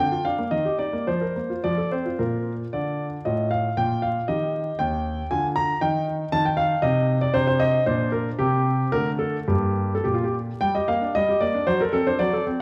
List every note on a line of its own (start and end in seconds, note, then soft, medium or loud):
0.00 0.11 D3 medium
0.00 0.25 G5 medium
0.11 0.26 F4 soft
0.25 0.39 D4 soft
0.25 0.52 F5 medium
0.39 0.52 A#3 soft
0.51 0.65 D#3 soft
0.51 0.77 D#5 medium
0.65 0.80 G4 soft
0.79 0.94 D#4 soft
0.79 1.08 D5 medium
0.93 1.08 A#3 soft
1.07 1.22 F3 soft
1.07 1.64 C5 medium
1.21 1.37 A#4 soft
1.36 1.51 A#3 soft
1.50 1.64 F4 soft
1.64 1.78 F3 soft
1.64 1.89 D5 medium
1.78 1.93 A4 soft
1.92 2.07 C4 soft
1.92 2.20 C5 soft
2.06 2.18 F4 soft
2.19 2.63 A#2 soft
2.19 3.22 F4 soft
2.19 2.52 A#4 medium
2.73 3.15 D3 soft
2.73 3.05 D5 medium
3.25 3.67 A2 soft
3.25 3.74 F4 soft
3.25 3.49 D#5 medium
3.51 3.74 F5 medium
3.77 4.18 A#2 soft
3.77 4.25 F4 soft
3.77 4.03 G5 medium
4.02 4.26 F5 medium
4.28 4.69 D#3 soft
4.28 5.26 G4 soft
4.28 4.75 D#5 medium
4.79 5.20 D#2 medium
4.79 5.30 G5 medium
5.31 5.72 D3 soft
5.31 5.78 F4 soft
5.31 5.46 G#5 medium
5.56 5.79 A#5 medium
5.81 6.23 D#3 medium
5.81 6.29 D#4 soft
5.81 6.04 G5 medium
6.32 6.73 D#3 medium
6.32 6.80 D#4 soft
6.32 6.45 A5 medium
6.45 6.58 G5 medium
6.57 6.83 F5 medium
6.82 7.23 C3 medium
6.82 7.30 D#4 soft
6.82 7.17 D#5 medium
7.21 7.34 D5 medium
7.33 7.75 C3 medium
7.33 7.82 D4 soft
7.33 7.46 C5 medium
7.47 7.60 C5 medium
7.59 7.83 D#5 medium
7.86 8.29 A#2 medium
7.86 8.35 D4 soft
7.86 8.10 C5 medium
8.12 8.28 A#4 medium
8.39 8.82 C3 medium
8.39 8.89 C4 soft
8.39 8.92 G4 medium
8.92 9.37 D3 soft
8.92 9.45 A3 soft
8.92 9.09 A#4 medium
9.19 9.36 A4 medium
9.48 9.94 G2 medium
9.48 10.57 A#3 soft
9.48 9.94 G4 medium
9.95 10.04 A4 medium
10.04 10.50 A#2 soft
10.04 10.14 G4 medium
10.14 10.24 F4 medium
10.24 10.33 G4 medium
10.61 10.74 G3 soft
10.61 10.74 G5 medium
10.75 10.89 G4 soft
10.75 10.88 D#5 medium
10.88 11.02 A#3 soft
10.88 11.12 F5 medium
11.01 11.15 D4 soft
11.15 11.28 G3 soft
11.15 11.41 D#5 medium
11.29 11.42 G4 soft
11.40 11.55 A#3 soft
11.40 11.67 D5 medium
11.54 11.68 D4 soft
11.67 11.80 F#3 medium
11.67 11.80 C5 medium
11.81 11.91 A4 soft
11.81 11.94 A#4 medium
11.93 12.08 C4 soft
11.93 12.07 A4 medium
12.07 12.21 D4 soft
12.07 12.20 C5 medium
12.19 12.32 F#3 medium
12.19 12.43 D5 medium
12.33 12.47 A4 soft
12.47 12.60 C4 soft